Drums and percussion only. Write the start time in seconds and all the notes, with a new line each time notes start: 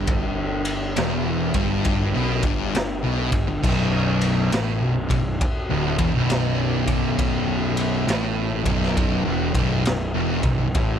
0.07 kick, ride
0.65 ride
0.96 snare, ride
1.54 kick, ride
1.85 kick, ride
2.43 kick, ride
2.75 snare, ride
3.32 kick, ride
3.64 kick, crash
4.21 ride
4.52 snare, ride
5.10 kick, ride
5.41 kick, ride
5.98 kick, ride
6.30 snare, ride
6.88 kick, ride
7.19 kick, ride
7.77 ride
8.08 snare, ride
8.66 kick, ride
8.83 snare
8.97 kick, ride
9.55 kick, ride
9.85 snare, ride
10.43 kick, ride
10.75 kick, ride